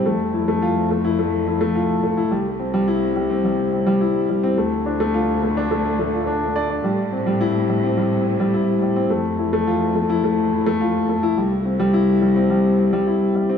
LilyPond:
<<
  \new Staff \with { instrumentName = "Grand piano" } { \time 4/4 \key f \lydian \tempo 4 = 106 a16 r16 e'16 a16 f'16 r16 a16 e'16 a16 r16 e'16 a16 f'16 r16 a16 e'16 | g16 r16 c'16 g16 e'16 r16 g16 c'16 g16 r16 c'16 g16 e'16 r16 g16 c'16 | a16 r16 d'16 a16 f'16 r16 a16 d'16 a16 r16 a16 f'16 d'16 r16 d''16 d'16 | g16 r16 c'16 g16 e'16 r16 g16 c'16 g16 r16 c'16 g16 e'16 r16 g16 c'16 |
a16 r16 e'16 a16 f'16 r16 a16 e'16 a16 r16 e'16 a16 f'16 r16 a16 e'16 | g16 r16 c'16 g16 e'16 r16 g16 c'16 g16 r16 c'16 g16 e'16 r16 g16 c'16 | }
  \new Staff \with { instrumentName = "Cello section" } { \clef bass \time 4/4 \key f \lydian f,1 | c,1 | d,1 | a,1 |
f,1 | c,1 | }
>>